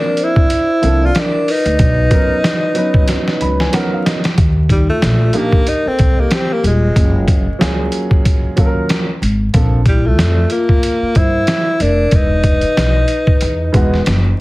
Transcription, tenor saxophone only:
Already playing: D4
0.23 E4
1.06 F4
1.19 D4
1.51 D#4
4.71 G3
4.90 A3
5.37 A#3
5.69 D#4
5.88 C4
6.20 A#3
6.34 C4
6.53 A#3
6.67 G#3
9.88 G3
10.07 A3
10.52 A#3
11.17 E4
11.82 D4
12.15 D#4

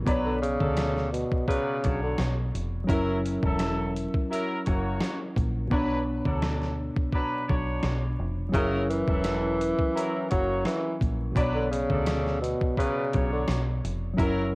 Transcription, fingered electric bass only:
0.07 B1
0.61 D2
1.85 B1
2.19 B1
2.55 F1
2.89 F#1
3.43 E1
4.67 F#1
5.37 A#1
5.71 B1
6.26 D2
7.50 B1
7.84 B1
8.19 F1
8.54 F#1
9.08 E1
10.32 F#1
11.01 A#1
11.36 B1
11.90 D2
13.15 B1
13.49 B1
13.84 F1
14.19 F#1

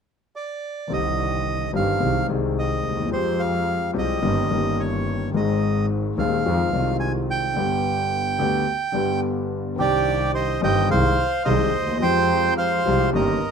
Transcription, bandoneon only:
0.36 D5
0.93 D#5
1.76 F5
2.59 D#5
3.13 C5
3.39 F5
3.98 D#5
4.80 C#5
5.36 D#5
6.19 F5
7.00 G#5
7.31 G5
9.79 G4 D5
10.35 C5 D#5
10.63 D#5 G5
10.91 C5 F5
11.45 C5 D#5
12.02 C5 G5
12.58 C5 F5
13.15 A#4 D#5

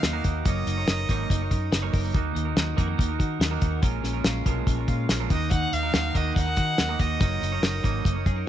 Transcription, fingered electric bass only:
0.03 D#2
0.24 D#2
0.46 F#1
0.67 F#1
0.88 F#1
1.09 G#1
1.30 F#1
1.51 F#2
1.72 F#1
1.93 F#1
2.15 D#2
2.35 D#2
2.57 D#2
2.78 F2
2.99 D#2
3.20 D#3
3.40 D#2
3.62 D#2
3.83 A#1
4.04 A#1
4.24 A#1
4.46 B1
4.67 A#1
4.88 A#2
5.09 A#1
5.30 D#2
5.73 D#2
5.94 D#2
6.15 D#2
6.36 D#2
6.57 D#3
6.79 D#2
7.00 D#2
7.21 F#1
7.42 F#1
7.62 F#1
7.84 G#1
8.05 F#1
8.26 F#2

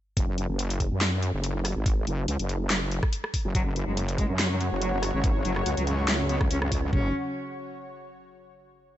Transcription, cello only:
3.55 F#3
3.66 F#2
3.76 F#2
3.87 G#3
3.97 F#2
4.08 F#2
4.18 G#3
4.29 F#2
4.39 F#2
4.50 F#3
4.60 F#2
4.72 F#2
4.81 F#3
4.93 F#2
5.03 F#2
5.14 C#3
5.24 F#2
5.35 F#2
5.45 F#3
5.56 F#2
5.66 F#2
5.77 F#3
5.87 F#2
5.99 F#2
6.08 A3
6.20 F#2
6.30 B3
6.41 F#2
6.51 C#4
6.62 F#2
6.72 F#2
6.83 F#2
6.93 C#4

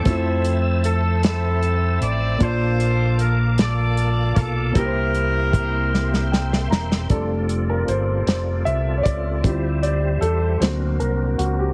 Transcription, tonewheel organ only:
Already playing: C5 A5
0.06 E5 E6
2.41 A#3 F5 D6
4.76 E5 G5 C6
7.11 C4 F4 A4 D5
9.43 G3 G4 C5 E5
10.61 C4 D4 F#4 A#4

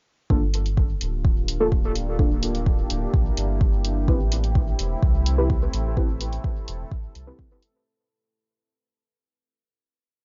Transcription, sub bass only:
0.30 G1
1.01 D1
2.90 D1
3.14 A#1
3.37 G1
4.08 A1
4.79 E1
5.03 C2
5.73 A1
6.68 E1
6.92 A1
7.15 C2

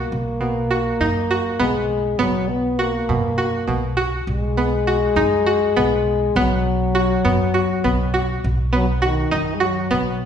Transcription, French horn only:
Already playing: A#3
1.60 G#3
2.20 F#3
2.49 B3
2.80 A#3
4.28 G#3
6.37 F#3
8.73 F#3
9.01 D#3
9.54 G#3
9.62 F#3

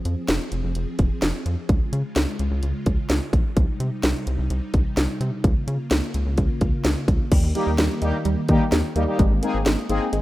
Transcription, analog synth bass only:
0.05 F2
0.29 F1
0.52 F1
0.64 F1
0.76 F1
0.99 F1
1.22 F1
1.46 F2
1.69 C#2
1.93 C#3
2.16 C#2
2.40 C#2
2.51 C#2
2.63 C#2
2.86 C#2
3.10 C#2
3.33 A#1
3.57 C2
3.80 C3
4.03 C2
4.27 C2
4.39 C2
4.50 C2
4.74 C2
4.97 C2
5.21 C3
5.44 C#2
5.67 C#3
5.91 C#2
6.14 C#2
6.26 C#2
6.38 C#2
6.61 C#2
6.85 C#2
7.08 C#2
7.32 D#2
7.43 D#2
7.67 D#2
7.79 D#2
8.02 D#2
8.25 D#2
8.49 D#3
8.72 D#2
8.96 D#2
9.19 G#1
9.31 G#1
9.54 G#1
9.66 G#1
9.89 G#1
10.13 G#1

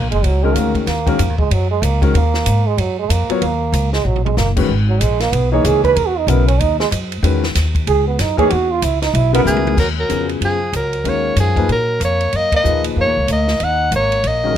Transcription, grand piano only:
0.43 D#3 G#3 C#4 F#4 A#4
1.06 D#3 G#3 C#4 F#4 A#4
2.01 D#3 G#3 C#4 F#4 A#4
3.29 F#3 B3 F4 A#4 C#5
4.56 D#3 G#3 C#4 F#4 B4
5.52 E3 A#3 D#4 G#4 C#5
6.28 C#3 F#3 B3 E4 A#4
7.23 D#3 G#3 C#4 F#4 B4
8.37 E3 A#3 D#4 G#4 C#5
9.33 C#3 F#3 B3 E4 A#4
10.09 C#3 B3 F4 F#4 G#4
11.04 D#3 G#3 C#4 F#4 A#4
11.56 F3 A#3 D#4 G#4 B4
12.64 A#2 F3 D#4 G#4 B4
14.44 D#3 G#3 C#4 F#4 A#4

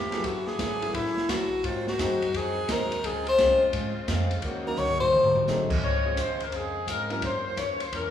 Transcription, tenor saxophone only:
Already playing: G4
0.26 F#4
0.47 G#4
0.94 E4
1.30 F#4
1.65 F4
1.89 F#4
2.36 G#4
2.71 A#4
3.05 G#4
3.28 C5
4.67 A#4
4.78 C#5
5.00 C5

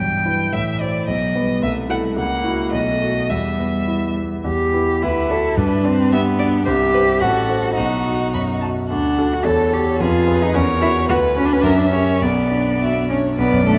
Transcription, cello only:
Already playing: E3
0.53 E3
1.08 F#3
1.35 G3
1.62 A3
2.17 A#3
2.73 A3
3.32 G3
4.46 G4
5.02 E4
5.58 D4
5.85 C4
6.12 B3
6.66 G4
7.21 F#4
7.76 D#4
8.90 D4
9.33 F#4
9.45 A4
9.73 G4
10.00 F4
10.42 D#4
10.55 C#4
10.82 E4
11.09 F#4
11.37 C#4
11.45 D4
11.52 C#4
11.61 D4
11.70 C#4
11.77 D4
11.86 C#4
12.22 B3
13.09 C#4
13.38 B3
13.66 A3

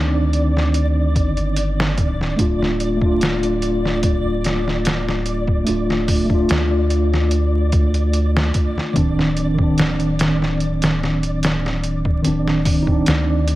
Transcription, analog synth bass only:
Already playing: D2
1.16 G1
1.98 D1
2.39 D1
5.68 D1
6.50 D2
8.96 D1
12.26 D1
13.08 D2

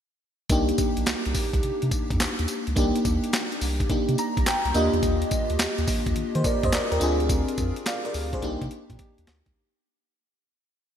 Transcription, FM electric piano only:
0.50 A#3 D4 D#4 G4
2.76 A#3 D4 D#4 G4
3.90 A#3 D4 D#4 G4
4.19 A#5
4.47 G5
4.74 A#3 D4 F4 G4 D#5
6.35 C5
6.45 A#4 D5
6.64 C5 D#5
6.73 A#4 D5
6.91 G4 A#4
7.00 C4 D4 F4 G#4
7.86 D5 F5
8.05 A#4 D5
8.34 G#4 C5
8.42 A#3 D4 D#4 G4

